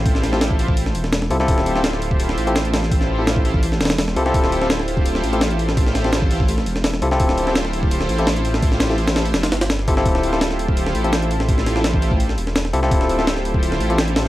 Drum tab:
HH |o---o---o---o---o---o---o---o---|o---o---o---o---o---o-x-o-x-o---|o-------o---o---o---ooo-o---o---|o---o---o---o---o---o-x-o-x-o---|
SD |--o-o-o-o---------o---o-o-o---o-|--o---o-o-o-------o-----o---o-o-|--o-----o---------o-ooo-o-o---o-|--o---o-o-o-------o-----o-----o-|
BD |o---------o---o-----------------|o-------------o-----------------|o---------o---o-----------------|o-------------o-----------------|

HH |o---o---o---o---o---o---o---o---|o---o---o---o---o---o-x-o-x-o---|o---o---o-o-o-o-o-o-o-o-o---o---|o---o---o---o---o---o-x-o-x-o---|
SD |--o-o-o-o---------o---o-o-o---o-|--o---o-o-o-------o-----o-----o-|--o-o-o---o-o---o-o-o-o-o-o---o-|--o---o-o-o-------o-----o-----o-|
BD |o---------o---o-----------------|o-------------o-----------------|o---------------------------o---|o-------------o-----------------|

HH |o---o---o---o---o---o---o---o---|o---o---o---o---o---o-x-o-x-o---|
SD |--o-o-o-o---------o---o-o-o---o-|--o---o-o-o-------o-----o---o---|
BD |o---------o---o-----------------|o-------------o-----------------|